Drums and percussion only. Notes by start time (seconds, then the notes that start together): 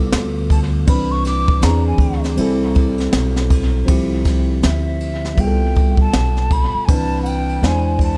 0.12 snare, hi-hat pedal, ride
0.50 kick, ride
0.87 kick, ride
1.24 snare, ride
1.48 kick
1.62 snare, hi-hat pedal, ride
1.98 kick, ride
2.24 snare, ride
2.37 ride
2.75 kick, ride
2.98 snare, ride
3.13 snare, hi-hat pedal, ride
3.36 snare
3.50 kick, ride
3.88 kick, ride
4.25 kick, snare, ride
4.63 snare, hi-hat pedal, ride
5.00 ride
5.25 snare
5.38 kick, ride
5.75 kick, ride
5.97 kick
6.13 snare, hi-hat pedal, ride
6.37 snare
6.51 kick, ride
6.88 kick, ride
7.25 ride
7.49 ride
7.63 snare, hi-hat pedal, ride
7.99 kick, ride